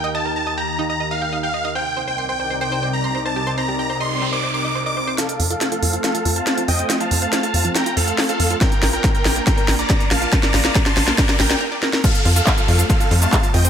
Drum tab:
CC |----------------|----------------|----------------|----------------|
HH |----------------|----------------|----------------|xxoxxxoxxxoxxxox|
SH |----------------|----------------|----------------|----------------|
CP |----------------|----------------|----------------|----------------|
SD |----------------|----------------|----------------|o---o---o---o---|
BD |----------------|----------------|----------------|----------------|

CC |----------------|----------------|----------------|x---------------|
HH |xxoxxxoxxxoxoxox|xxoxxxoxxxoxxxox|xxoxxxoxxxox----|xxoxxxoxxxoxxxox|
SH |----------------|----------------|----------------|xx-xxx-xxx-xxx-x|
CP |----------------|----------------|----------------|----x------xx---|
SD |o---o---o---o---|o-o-o-o-o-o-o-o-|oooooooooooo--oo|----------------|
BD |----------------|o---o---o---o---|o---o---o-------|o---o---o---o---|